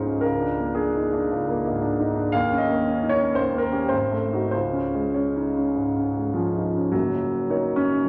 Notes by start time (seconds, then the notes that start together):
Already playing: C#2 G#2 G#3 C#4 D#4 C5 C#5 D#5 F5
0.06 C#4
0.21 C#2 A#4
0.40 D4
0.58 A#3
0.75 D4 G#4
0.96 D#4
1.13 D4
1.31 C#2
1.49 A#3
1.67 G#2
1.82 D4
2.00 D#4
2.16 D4
2.32 D#2 F5
2.51 C#4
2.58 D#5
2.69 A#3
2.85 C#4
3.03 D#4
3.09 C#5
3.20 C#4
3.35 D#2 C5
3.53 A#3
3.58 A#4
3.72 C#4 G4
3.89 G#1 C5
4.11 A3
4.33 D#4 F#4
4.51 C#2 C5
4.73 C#4
4.94 G#3
5.14 C#4 C#5
5.36 D#4
5.57 C#4
5.76 G#2
5.96 C#4
6.17 G#3
6.34 F3 C#4
6.57 D#4
6.77 C#4
6.92 F#1 F#2 F#3
7.50 D#4 A#4 C#5
7.76 C#4
8.04 F#1 F#2